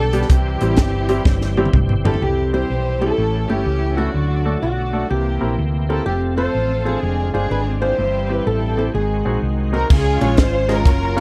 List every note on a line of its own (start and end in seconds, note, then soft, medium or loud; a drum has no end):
0.00 0.23 B1 medium
0.00 0.26 B2 medium
0.00 0.26 D3 medium
0.00 0.26 G3 medium
0.00 0.26 D4 medium
0.00 0.26 G4 medium
0.00 0.30 A4 loud
0.13 0.23 G3 medium
0.13 0.23 B3 medium
0.13 0.23 D4 medium
0.13 0.23 G4 medium
0.13 closed hi-hat medium
0.22 snare soft
0.29 0.56 C2 medium
0.29 1.05 C3 medium
0.29 2.17 E3 medium
0.29 2.18 G3 medium
0.29 2.18 C4 medium
0.29 1.70 C4 medium
0.29 1.70 E4 medium
0.29 2.17 G4 medium
0.29 1.74 G4 medium
0.29 kick loud
0.29 closed hi-hat medium
0.61 0.76 A1 medium
0.61 0.71 G3 medium
0.61 0.71 C4 medium
0.61 0.71 E4 medium
0.61 0.72 G4 medium
0.61 closed hi-hat medium
0.77 1.19 G1 medium
0.77 kick medium
0.77 snare loud
0.77 closed hi-hat medium
1.09 1.19 G3 medium
1.09 1.19 C4 medium
1.09 1.19 E4 medium
1.09 1.19 G4 medium
1.09 closed hi-hat medium
1.25 1.66 G1 medium
1.25 kick loud
1.25 snare medium
1.41 snare medium
1.57 1.67 G3 medium
1.57 1.68 C4 medium
1.57 1.67 E4 medium
1.57 1.68 G4 loud
1.57 high tom medium
1.66 high tom medium
1.73 2.14 G1 loud
1.73 kick medium
1.73 mid tom medium
1.89 mid tom medium
2.05 2.15 G3 medium
2.05 2.15 C4 medium
2.05 2.15 E4 medium
2.05 2.15 G4 medium
2.05 2.21 A4 medium
2.05 2.23 A4 medium
2.05 floor tom loud
2.14 floor tom medium
2.21 2.63 C2 medium
2.21 2.97 C3 medium
2.21 3.16 E3 medium
2.21 3.16 G3 medium
2.21 3.16 C4 medium
2.21 3.14 C4 medium
2.21 2.52 E4 medium
2.21 2.29 F#4 soft
2.21 2.52 G4 medium
2.21 2.54 G4 medium
2.27 3.17 G4 medium
2.53 2.63 G3 medium
2.53 2.63 C4 soft
2.53 2.64 E4 medium
2.53 3.01 E4 medium
2.53 2.63 G4 medium
2.53 3.14 G4 medium
2.53 2.98 C5 medium
2.53 3.01 C5 medium
2.70 3.11 B1 medium
3.01 3.11 G3 medium
3.01 3.11 C4 medium
3.01 3.48 C#4 medium
3.01 3.11 E4 medium
3.01 3.48 E4 medium
3.01 3.12 G4 medium
3.01 3.49 A4 medium
3.18 3.45 A1 medium
3.18 3.93 A2 medium
3.18 4.12 E3 soft
3.18 4.12 A3 medium
3.18 4.12 C#4 medium
3.18 4.12 G4 medium
3.48 3.64 G1 medium
3.48 3.59 A3 medium
3.48 3.59 C#4 medium
3.48 4.10 C#4 medium
3.48 3.59 E4 medium
3.48 4.10 E4 medium
3.48 3.97 G4 medium
3.48 3.60 G4 medium
3.48 3.97 G4 medium
3.66 4.07 C#2 medium
3.96 4.07 A3 medium
3.96 4.62 A3 medium
3.96 4.07 C#4 medium
3.96 4.62 D4 medium
3.96 4.08 E4 medium
3.96 4.61 F#4 medium
3.96 4.08 A4 medium
4.14 4.55 D2 medium
4.14 4.90 D3 medium
4.14 5.08 F#3 medium
4.14 5.09 A3 medium
4.14 5.09 D4 medium
4.14 5.09 A4 medium
4.45 4.56 A3 medium
4.45 4.56 D4 medium
4.45 4.56 F#4 medium
4.45 4.56 A4 medium
4.62 5.03 B1 medium
4.62 5.08 A3 soft
4.62 5.08 D4 medium
4.62 5.07 F#4 medium
4.62 5.10 F#4 medium
4.93 5.04 A3 medium
4.93 5.04 D4 medium
4.93 5.04 F#4 soft
4.93 5.04 A4 medium
5.10 5.37 C2 medium
5.10 5.86 C3 medium
5.10 6.05 E3 medium
5.10 6.05 A#3 soft
5.10 6.03 A#3 soft
5.10 6.05 C4 soft
5.10 6.03 E4 soft
5.10 5.58 G4 medium
5.10 5.55 G4 medium
5.10 6.05 G4 medium
5.41 5.56 A#1 medium
5.41 5.51 C4 medium
5.41 5.52 E4 medium
5.41 5.52 G4 medium
5.41 5.52 A#4 medium
5.59 5.99 D2 medium
5.89 6.00 C4 medium
5.89 6.00 E4 medium
5.89 6.00 G4 medium
5.89 6.05 A4 medium
5.89 6.06 A4 medium
5.89 6.00 A#4 medium
6.06 6.47 F1 medium
6.06 7.00 F3 medium
6.06 7.01 A3 medium
6.06 7.01 C4 medium
6.06 6.85 C4 medium
6.06 6.37 G4 medium
6.06 6.21 G4 medium
6.06 7.00 A4 medium
6.37 6.48 C4 medium
6.37 6.48 F4 medium
6.37 6.99 F4 medium
6.37 6.48 A4 medium
6.37 6.99 A4 medium
6.37 6.86 C5 medium
6.37 6.48 C5 medium
6.37 6.83 C5 medium
6.55 6.95 A1 medium
6.85 6.96 C4 medium
6.85 7.33 C4 medium
6.85 7.33 D4 medium
6.85 6.96 F4 medium
6.85 7.33 G#4 medium
6.85 6.96 A4 medium
6.85 6.96 C5 medium
7.03 7.29 F1 medium
7.03 7.97 D3 medium
7.03 7.97 G#3 medium
7.03 7.97 C4 medium
7.03 7.97 F4 medium
7.33 7.48 G1 medium
7.33 7.95 C4 medium
7.33 7.44 D4 medium
7.33 7.95 D4 medium
7.33 7.44 F4 medium
7.33 7.44 G#4 medium
7.33 7.79 G#4 medium
7.33 7.51 G#4 medium
7.33 7.44 C5 medium
7.51 7.91 G#1 medium
7.51 7.60 B4 medium
7.82 7.92 D4 medium
7.82 8.46 E4 medium
7.82 7.92 F4 medium
7.82 8.74 G4 medium
7.82 7.92 G#4 medium
7.82 8.46 C5 medium
7.82 7.92 C5 medium
7.82 8.30 C5 medium
7.98 8.39 G1 medium
7.98 8.74 G2 medium
7.98 8.92 E3 medium
7.98 8.92 G3 medium
7.98 8.92 C4 medium
7.98 8.92 G4 medium
8.29 8.40 C4 medium
8.29 8.40 E4 medium
8.29 8.40 G4 medium
8.29 8.47 B4 medium
8.29 8.40 C5 medium
8.46 8.87 A1 medium
8.46 8.92 C4 medium
8.46 8.92 E4 medium
8.46 8.76 A4 medium
8.46 8.95 A4 medium
8.77 8.88 C4 medium
8.77 8.88 E4 medium
8.77 8.88 G4 medium
8.77 8.83 A4 medium
8.77 8.88 C5 medium
8.94 9.21 G#1 loud
8.94 9.69 G#2 soft
8.94 9.88 D#3 medium
8.94 9.88 G#3 soft
8.94 9.88 C4 medium
8.94 9.87 C4 soft
8.94 9.87 D#4 soft
8.94 9.88 F#4 medium
8.94 9.39 G#4 medium
9.25 9.40 A#1 medium
9.25 9.36 C4 medium
9.25 9.36 D#4 medium
9.25 9.36 F#4 medium
9.25 9.36 G#4 medium
9.42 9.83 C2 medium
9.73 9.83 C4 medium
9.73 9.83 D#4 medium
9.73 9.83 F#4 medium
9.73 9.84 A#4 medium
9.73 9.89 A#4 medium
9.73 9.90 A#4 medium
9.90 10.17 C#2 medium
9.90 10.65 C#3 medium
9.90 10.84 G#3 medium
9.90 10.84 C#4 medium
9.90 10.69 C#4 medium
9.90 9.98 E4 medium
9.90 10.68 F4 medium
9.90 10.20 G#4 loud
9.90 kick loud
9.90 crash loud
9.96 10.84 F4 medium
10.21 10.40 A#1 medium
10.21 10.31 G#3 medium
10.21 10.31 C#4 medium
10.21 10.31 F4 medium
10.21 10.31 G#4 medium
10.21 10.31 C#5 medium
10.21 10.39 C#5 medium
10.21 ride medium
10.37 10.86 G#1 medium
10.37 10.69 C5 loud
10.37 kick medium
10.37 snare loud
10.37 ride medium
10.69 10.79 G#3 medium
10.69 10.79 C#4 medium
10.69 11.17 C#4 medium
10.69 10.79 F4 medium
10.69 11.16 F4 medium
10.69 10.79 G#4 medium
10.69 11.17 A#4 loud
10.69 10.79 D#5 medium
10.69 snare soft
10.69 ride medium
10.85 11.20 F#1 loud
10.85 11.20 F#3 medium
10.85 11.20 A#3 medium
10.85 11.20 C#4 medium
10.85 11.20 F4 medium
10.85 11.20 A#4 medium
10.85 kick loud
10.85 ride medium
11.16 11.20 A#3 medium
11.16 11.20 C#4 medium
11.16 11.20 F4 medium
11.16 11.20 F#4 medium
11.16 11.20 A#4 medium